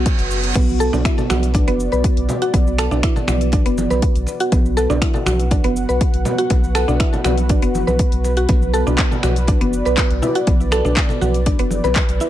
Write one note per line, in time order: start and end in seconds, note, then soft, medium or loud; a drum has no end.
0.00 12.29 B3 medium
0.00 12.29 F#4 medium
0.00 0.52 C#5 medium
0.00 0.54 F#5 loud
0.00 reverse cymbal medium
0.06 kick loud
0.06 closed hi-hat medium
0.06 cabasa medium
0.19 0.53 F#1 loud
0.19 closed hi-hat soft
0.19 cabasa soft
0.31 cabasa medium
0.44 closed hi-hat soft
0.44 cabasa soft
0.55 0.90 B1 loud
0.55 0.68 B3 medium
0.55 12.29 B4 medium
0.55 4.51 D5 medium
0.55 kick loud
0.55 closed hi-hat medium
0.55 crash medium
0.55 high conga loud
0.55 cabasa medium
0.69 cabasa soft
0.79 0.92 A4 loud
0.79 muted conga soft
0.79 cabasa medium
0.93 1.03 B1 medium
0.93 1.04 D4 medium
0.93 low conga medium
0.93 cabasa soft
1.05 1.17 E4 medium
1.05 finger snap medium
1.05 kick loud
1.05 closed hi-hat medium
1.05 cabasa medium
1.18 muted conga soft
1.18 low conga medium
1.18 cabasa soft
1.30 1.64 B1 loud
1.30 1.42 F#4 medium
1.30 finger snap medium
1.30 high conga loud
1.30 low conga medium
1.30 cabasa medium
1.43 closed hi-hat soft
1.43 cabasa soft
1.54 1.67 D4 medium
1.54 kick loud
1.54 closed hi-hat medium
1.54 muted conga medium
1.54 cabasa medium
1.68 1.88 F#1 medium
1.68 1.79 B3 loud
1.68 closed hi-hat soft
1.68 high conga medium
1.80 cabasa loud
1.92 2.02 B1 medium
1.92 2.03 B4 medium
1.92 muted conga soft
1.92 cabasa soft
2.04 kick loud
2.04 closed hi-hat medium
2.04 cabasa medium
2.17 2.27 B1 loud
2.17 closed hi-hat soft
2.29 muted conga medium
2.29 low conga medium
2.29 cabasa medium
2.42 2.53 F#4 loud
2.42 closed hi-hat soft
2.42 cabasa soft
2.54 2.88 B1 loud
2.54 2.66 B3 medium
2.54 kick loud
2.54 closed hi-hat medium
2.54 high conga loud
2.54 cabasa medium
2.67 cabasa soft
2.78 2.90 A4 loud
2.78 finger snap medium
2.78 muted conga soft
2.78 high conga medium
2.78 cabasa loud
2.91 3.01 B1 medium
2.91 3.02 D4 medium
2.91 low conga loud
2.91 cabasa soft
3.03 3.16 E4 medium
3.03 finger snap medium
3.03 kick loud
3.03 closed hi-hat medium
3.03 cabasa medium
3.16 muted conga soft
3.16 low conga medium
3.16 cabasa soft
3.28 3.63 B1 loud
3.28 3.40 F#4 medium
3.28 finger snap medium
3.28 high conga loud
3.28 low conga medium
3.28 cabasa medium
3.41 closed hi-hat soft
3.41 cabasa soft
3.52 3.65 D4 medium
3.52 kick loud
3.52 closed hi-hat medium
3.52 muted conga medium
3.52 cabasa medium
3.66 3.87 F#1 medium
3.66 3.77 B3 medium
3.66 closed hi-hat soft
3.66 cabasa soft
3.78 high conga loud
3.78 cabasa medium
3.90 4.01 B1 medium
3.90 4.01 B4 medium
3.90 muted conga soft
3.90 high conga medium
3.90 cabasa soft
4.02 kick loud
4.02 closed hi-hat medium
4.02 cabasa medium
4.16 4.26 B1 loud
4.16 closed hi-hat soft
4.16 cabasa soft
4.27 muted conga soft
4.27 cabasa loud
4.40 4.51 F#4 loud
4.40 closed hi-hat soft
4.40 cabasa soft
4.52 4.87 B1 loud
4.52 4.64 B3 medium
4.52 8.47 F#5 medium
4.52 kick loud
4.52 closed hi-hat medium
4.52 high conga loud
4.52 cabasa medium
4.66 cabasa soft
4.77 4.89 A4 loud
4.77 muted conga soft
4.77 cabasa medium
4.90 5.00 B1 medium
4.90 5.00 D4 medium
4.90 low conga loud
4.90 cabasa soft
5.01 5.14 E4 medium
5.01 finger snap medium
5.01 kick loud
5.01 closed hi-hat medium
5.01 cabasa medium
5.14 muted conga soft
5.14 low conga medium
5.14 cabasa soft
5.26 5.61 B1 loud
5.26 5.39 F#4 medium
5.26 finger snap medium
5.26 high conga loud
5.26 low conga loud
5.26 cabasa medium
5.40 closed hi-hat soft
5.40 cabasa soft
5.51 5.64 D4 medium
5.51 kick loud
5.51 closed hi-hat medium
5.51 muted conga medium
5.51 cabasa medium
5.64 5.85 F#1 medium
5.64 5.75 B3 loud
5.64 closed hi-hat soft
5.64 high conga medium
5.76 cabasa loud
5.89 5.99 B1 medium
5.89 6.00 B4 medium
5.89 muted conga soft
5.89 cabasa soft
6.01 kick loud
6.01 closed hi-hat medium
6.01 cabasa medium
6.14 6.24 B1 loud
6.14 closed hi-hat soft
6.25 muted conga medium
6.25 low conga loud
6.25 cabasa loud
6.38 6.49 F#4 loud
6.38 closed hi-hat soft
6.38 cabasa soft
6.50 6.85 B1 loud
6.50 6.63 B3 medium
6.50 kick loud
6.50 closed hi-hat medium
6.50 high conga loud
6.50 cabasa medium
6.64 cabasa soft
6.75 6.87 A4 loud
6.75 finger snap medium
6.75 muted conga soft
6.75 high conga medium
6.75 cabasa medium
6.88 6.98 B1 medium
6.88 6.99 D4 medium
6.88 low conga medium
6.88 cabasa soft
7.00 7.12 E4 medium
7.00 finger snap medium
7.00 kick loud
7.00 closed hi-hat medium
7.00 cabasa medium
7.13 muted conga soft
7.13 low conga medium
7.13 cabasa soft
7.24 7.59 B1 loud
7.24 7.37 F#4 medium
7.24 finger snap medium
7.24 high conga loud
7.24 low conga loud
7.24 cabasa medium
7.38 closed hi-hat soft
7.38 cabasa soft
7.49 7.62 D4 medium
7.49 kick loud
7.49 closed hi-hat medium
7.49 muted conga soft
7.49 cabasa medium
7.62 7.83 F#1 medium
7.62 7.74 B3 loud
7.62 closed hi-hat soft
7.62 cabasa soft
7.75 high conga loud
7.75 cabasa medium
7.87 7.98 B1 medium
7.87 7.98 B4 medium
7.87 muted conga soft
7.87 high conga medium
7.87 cabasa soft
7.99 kick loud
7.99 closed hi-hat medium
7.99 cabasa medium
8.12 8.46 B1 loud
8.12 closed hi-hat soft
8.12 cabasa soft
8.24 muted conga soft
8.24 cabasa loud
8.37 8.48 F#4 loud
8.37 closed hi-hat soft
8.37 cabasa soft
8.49 8.83 B1 loud
8.49 8.61 B3 medium
8.49 12.29 D5 medium
8.49 kick loud
8.49 closed hi-hat medium
8.49 high conga loud
8.49 cabasa medium
8.62 cabasa soft
8.74 8.85 A4 loud
8.74 muted conga soft
8.74 cabasa medium
8.87 8.97 B1 medium
8.87 8.97 D4 medium
8.87 low conga medium
8.87 cabasa soft
8.98 finger snap medium
8.98 kick loud
8.98 clap loud
8.98 closed hi-hat medium
8.98 cabasa medium
9.11 muted conga soft
9.11 low conga medium
9.11 cabasa soft
9.23 9.58 B1 loud
9.23 9.36 F#4 medium
9.23 finger snap medium
9.23 high conga loud
9.23 low conga medium
9.23 cabasa medium
9.36 closed hi-hat soft
9.36 cabasa soft
9.47 9.60 D4 medium
9.47 kick loud
9.47 closed hi-hat medium
9.47 muted conga medium
9.47 cabasa medium
9.61 9.82 F#1 medium
9.61 9.72 B3 medium
9.61 closed hi-hat soft
9.61 high conga medium
9.73 cabasa medium
9.85 9.96 B1 medium
9.85 9.96 B4 medium
9.85 muted conga soft
9.85 cabasa soft
9.98 kick loud
9.98 clap loud
9.98 closed hi-hat medium
9.98 cabasa medium
10.11 10.21 B1 loud
10.11 closed hi-hat soft
10.22 10.35 E4 medium
10.22 muted conga soft
10.22 low conga medium
10.22 cabasa loud
10.35 10.46 F#4 loud
10.35 closed hi-hat soft
10.35 cabasa soft
10.47 10.82 B1 loud
10.47 10.60 B3 medium
10.47 kick loud
10.47 closed hi-hat medium
10.47 high conga loud
10.47 cabasa soft
10.61 cabasa soft
10.71 10.84 A4 loud
10.71 finger snap medium
10.71 muted conga medium
10.71 high conga medium
10.71 cabasa medium
10.85 10.95 B1 medium
10.85 10.96 D4 medium
10.85 low conga medium
10.85 cabasa soft
10.97 finger snap medium
10.97 kick loud
10.97 clap loud
10.97 closed hi-hat medium
10.97 cabasa medium
11.09 muted conga soft
11.09 low conga medium
11.09 cabasa soft
11.21 11.56 B1 loud
11.21 11.34 F#4 medium
11.21 high conga loud
11.21 low conga medium
11.21 cabasa medium
11.34 closed hi-hat soft
11.34 cabasa soft
11.46 11.59 D4 medium
11.46 kick loud
11.46 closed hi-hat medium
11.46 muted conga soft
11.46 cabasa medium
11.59 11.80 F#1 medium
11.59 11.71 B3 loud
11.59 closed hi-hat soft
11.59 cabasa soft
11.71 high conga loud
11.71 cabasa medium
11.84 11.94 B1 medium
11.84 11.95 B4 medium
11.84 muted conga soft
11.84 high conga medium
11.84 cabasa soft
11.96 kick loud
11.96 clap loud
11.96 closed hi-hat medium
11.96 cabasa medium
12.09 12.19 B1 loud
12.09 closed hi-hat soft
12.09 cabasa soft
12.20 12.29 E4 medium
12.20 muted conga medium
12.20 cabasa medium